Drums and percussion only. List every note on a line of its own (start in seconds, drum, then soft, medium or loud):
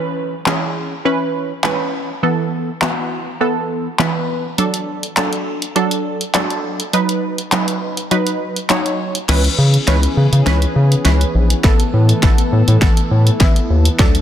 0.46 clap loud
1.64 clap loud
2.82 clap loud
3.99 clap loud
4.58 closed hi-hat medium
4.74 closed hi-hat medium
5.03 closed hi-hat soft
5.17 clap loud
5.17 closed hi-hat medium
5.33 closed hi-hat medium
5.62 closed hi-hat soft
5.76 closed hi-hat medium
5.91 closed hi-hat medium
6.21 closed hi-hat soft
6.34 clap loud
6.34 closed hi-hat medium
6.50 closed hi-hat soft
6.80 closed hi-hat medium
6.93 closed hi-hat medium
7.09 closed hi-hat medium
7.38 closed hi-hat soft
7.52 clap loud
7.52 closed hi-hat medium
7.68 closed hi-hat medium
7.97 closed hi-hat medium
8.11 closed hi-hat medium
8.27 closed hi-hat medium
8.56 closed hi-hat soft
8.70 clap loud
8.70 closed hi-hat medium
8.86 closed hi-hat soft
9.15 closed hi-hat medium
9.29 snare medium
9.29 closed hi-hat medium
9.29 crash medium
9.44 closed hi-hat medium
9.74 closed hi-hat soft
9.88 snare medium
9.88 closed hi-hat medium
10.03 closed hi-hat medium
10.33 closed hi-hat medium
10.47 snare medium
10.47 closed hi-hat medium
10.62 closed hi-hat medium
10.92 closed hi-hat soft
11.05 snare medium
11.05 closed hi-hat medium
11.21 closed hi-hat soft
11.50 closed hi-hat medium
11.64 kick loud
11.64 snare medium
11.64 closed hi-hat medium
11.80 closed hi-hat medium
12.09 closed hi-hat soft
12.23 kick loud
12.23 snare medium
12.23 closed hi-hat medium
12.38 closed hi-hat medium
12.68 closed hi-hat medium
12.82 kick loud
12.82 snare medium
12.82 closed hi-hat medium
12.97 closed hi-hat medium
13.27 closed hi-hat soft
13.40 kick loud
13.40 snare medium
13.40 closed hi-hat medium
13.56 closed hi-hat soft
13.85 closed hi-hat medium
13.99 kick loud
13.99 snare medium
13.99 closed hi-hat medium
14.15 closed hi-hat medium